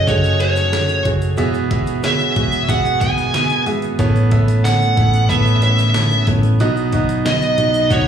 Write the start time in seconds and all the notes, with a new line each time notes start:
Already playing: F#3 A3 C#4 F#4 G#4 A4 C#5 E5
0.07 F#1 A3 F#4 G#4 C#5 D#5, kick, closed hi-hat, shaker
0.24 closed hi-hat, shaker
0.40 A3 F#4 G#4 C#5, closed hi-hat, shaker
0.56 snare, closed hi-hat, shaker
0.72 A3 F#4 G#4 C#5, snare, closed hi-hat, shaker
0.88 closed hi-hat, shaker
1.05 F#1 A3 F#4 G#4 C#5, kick, closed hi-hat
1.22 closed hi-hat, shaker
1.36 E1 E3 B3 F#4 G#4 E5, closed hi-hat, shaker
1.54 closed hi-hat, shaker
1.70 B3 F#4 G#4 E5, kick, closed hi-hat
1.87 closed hi-hat, shaker
2.03 B3 F#4 G#4 C#5 E5, snare, closed hi-hat, shaker
2.19 shaker
2.36 E1 B3 F#4 G#4 E5, kick, closed hi-hat
2.52 closed hi-hat, shaker
2.69 E1 B3 F#4 G#4 E5 F#5, kick, closed hi-hat, shaker
2.85 closed hi-hat, shaker
3.01 B3 F#4 G#4 F#5 G#5, kick, closed hi-hat, shaker
3.18 snare, closed hi-hat, shaker
3.34 B3 F#4 G#4 E5, snare, closed hi-hat, shaker
3.50 closed hi-hat, shaker
3.66 G#1 B3 F#4 G#4 E5, open hi-hat
3.82 closed hi-hat, shaker
3.99 A1 A2 A3 B3 C#4 E4 A4 C#5, kick, closed hi-hat, shaker
4.16 closed hi-hat, shaker
4.31 B3 E4 A4 E5, kick, closed hi-hat
4.48 closed hi-hat, shaker
4.64 B3 E4 A4 C#5 F#5, snare, closed hi-hat, shaker
4.82 shaker
4.96 A1 B3 E4 A4 C#5, kick, closed hi-hat
5.14 closed hi-hat, shaker
5.29 A1 B3 E4 A4 B4 E5, kick, closed hi-hat, shaker
5.46 closed hi-hat, shaker
5.62 B3 E4 A4 C#5 E5, closed hi-hat, shaker
5.78 snare, closed hi-hat, shaker
5.94 B3 E4 A4 C#5, snare, closed hi-hat, shaker
6.11 closed hi-hat, shaker
6.27 A1 B3 E4 A4 C#5, kick, open hi-hat
6.43 closed hi-hat, shaker
6.60 B1 B2 F#3 B3 D#4 F#4 D#5, closed hi-hat, shaker
6.76 shaker
6.92 B3 D#4 F#4 D#5, kick, closed hi-hat, shaker
7.09 closed hi-hat, shaker
7.26 B3 D#4 F#4 D#5, snare, closed hi-hat, shaker
7.42 closed hi-hat, shaker
7.58 B1 B3 D#4 F#4 D#5, closed hi-hat, shaker
7.74 closed hi-hat, shaker
7.90 B1 B3 D#4 F#4 C#5 F#5, kick, snare, closed hi-hat, shaker